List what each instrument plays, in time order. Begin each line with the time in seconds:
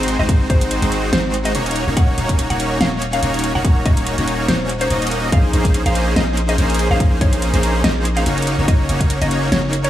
Already playing: 808-style bass G#1, supersaw synth G#3 C4 D#4 F#4 C5, synth pluck C5, impact
0.03 closed hi-hat
0.08 closed hi-hat
0.19 808-style bass G#1, supersaw synth G#3 C4 D#4 F#4 C5, synth pluck D#5
0.29 808-style bass G#1, supersaw synth G#3 C4 D#4 F#4 C5, kick, closed hi-hat
0.50 808-style bass G#1, supersaw synth G#3 C4 D#4 F#4 C5, synth pluck C5, kick, closed hi-hat
0.61 closed hi-hat
0.71 closed hi-hat
0.82 808-style bass G#1, supersaw synth G#3 C4 D#4 F#4 C5, closed hi-hat
0.92 closed hi-hat
1.13 808-style bass G#1, supersaw synth G#3 C4 D#4 F#4 C5, synth pluck C5, snare, closed hi-hat
1.34 closed hi-hat
1.45 synth pluck D#5, closed hi-hat
1.55 808-style bass D#1, supersaw synth A#3 C#4 D#4 F#4 C#5, closed hi-hat
1.66 closed hi-hat
1.71 closed hi-hat
1.76 closed hi-hat
1.87 808-style bass D#1, supersaw synth A#3 C#4 D#4 F#4 C#5
1.97 808-style bass D#1, supersaw synth A#3 C#4 D#4 F#4 C#5, synth pluck F#5, kick, closed hi-hat
2.18 808-style bass D#1, supersaw synth A#3 C#4 D#4 F#4 C#5, closed hi-hat
2.29 kick, closed hi-hat
2.39 closed hi-hat
2.50 808-style bass D#1, supersaw synth A#3 C#4 D#4 F#4 C#5, synth pluck F#5, closed hi-hat
2.60 closed hi-hat
2.81 808-style bass D#1, supersaw synth A#3 C#4 D#4 F#4 C#5, synth pluck F5, snare, closed hi-hat
3.02 closed hi-hat
3.13 synth pluck F5, closed hi-hat
3.23 808-style bass D#1, supersaw synth A#3 C#4 D#4 F#4 C#5, closed hi-hat
3.34 closed hi-hat
3.39 closed hi-hat
3.44 closed hi-hat
3.55 808-style bass D#1, supersaw synth A#3 C#4 D#4 F#4 C#5, synth pluck F#5
3.65 808-style bass D#1, supersaw synth A#3 C#4 D#4 F#4 C#5, kick, closed hi-hat
3.86 808-style bass D#1, supersaw synth A#3 C#4 D#4 F#4 C#5, synth pluck D#5, kick, closed hi-hat
3.97 closed hi-hat
4.07 closed hi-hat
4.18 808-style bass D#1, supersaw synth A#3 C#4 D#4 F#4 C#5, closed hi-hat
4.28 closed hi-hat
4.48 808-style bass D#1, supersaw synth A#3 C#4 D#4 F#4 C#5, synth pluck C5, snare, closed hi-hat
4.69 closed hi-hat
4.81 synth pluck C5, closed hi-hat
4.90 808-style bass D#1, supersaw synth A#3 C#4 D#4 F#4 D#5, closed hi-hat
5.02 closed hi-hat
5.07 closed hi-hat
5.11 closed hi-hat
5.32 808-style bass A#1, supersaw synth A#3 C#4 D#4 G#4 C5, synth pluck F5, kick, closed hi-hat
5.53 808-style bass A#1, supersaw synth A#3 C#4 D#4 G#4 C5, closed hi-hat
5.65 kick, closed hi-hat
5.74 closed hi-hat
5.86 808-style bass A#1, supersaw synth A#3 C#4 D#4 G#4 C5, synth pluck F5, closed hi-hat
5.95 closed hi-hat
6.16 808-style bass A#1, supersaw synth A#3 C#4 D#4 G#4 C5, synth pluck D#5, snare, closed hi-hat
6.37 closed hi-hat
6.49 synth pluck D#5, closed hi-hat
6.58 808-style bass A#1, supersaw synth A#3 C#4 D#4 G#4 C5, closed hi-hat
6.70 closed hi-hat
6.74 closed hi-hat
6.79 closed hi-hat
6.91 808-style bass A#1, supersaw synth A#3 C#4 D#4 G#4 C5, synth pluck F5
7.00 808-style bass A#1, supersaw synth A#3 C#4 D#4 G#4 C5, kick, closed hi-hat
7.21 808-style bass A#1, supersaw synth A#3 C#4 D#4 G#4 C5, synth pluck C#5, kick, closed hi-hat
7.33 closed hi-hat
7.42 closed hi-hat
7.54 808-style bass A#1, supersaw synth A#3 C#4 D#4 G#4 C5, closed hi-hat
7.63 closed hi-hat
7.84 808-style bass A#1, supersaw synth A#3 C#4 D#4 G#4 C5, synth pluck D#5, snare, closed hi-hat
8.05 closed hi-hat
8.17 synth pluck F5, closed hi-hat
8.26 808-style bass F#1, supersaw synth A#3 C#4 D#4 F#4 C#5, closed hi-hat
8.38 closed hi-hat
8.42 closed hi-hat
8.47 closed hi-hat
8.58 808-style bass F#1, supersaw synth A#3 C#4 D#4 F#4 C#5
8.68 808-style bass F#1, supersaw synth A#3 C#4 D#4 F#4 C#5, synth pluck D#5, kick, closed hi-hat
8.89 808-style bass F#1, supersaw synth A#3 C#4 D#4 F#4 C#5, closed hi-hat
9.00 kick, closed hi-hat
9.10 closed hi-hat
9.21 808-style bass F#1, supersaw synth A#3 C#4 D#4 F#4 C#5, synth pluck D#5, closed hi-hat
9.31 closed hi-hat
9.52 808-style bass F#1, supersaw synth A#3 C#4 D#4 F#4 C#5, synth pluck C#5, snare, closed hi-hat
9.73 closed hi-hat
9.84 synth pluck C#5, closed hi-hat